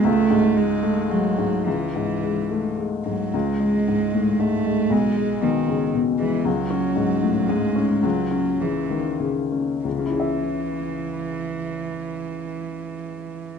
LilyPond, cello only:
\new Staff \with { instrumentName = "Cello" } { \clef bass \time 3/4 \key cis \minor \tempo 4 = 108 a4 gis4 fis4 | e2 r8 fis8 | gis2 a4 | gis4 dis4 r8 e8 |
fis2 gis4 | fis4 e4 r4 | e2.~ | e2. | }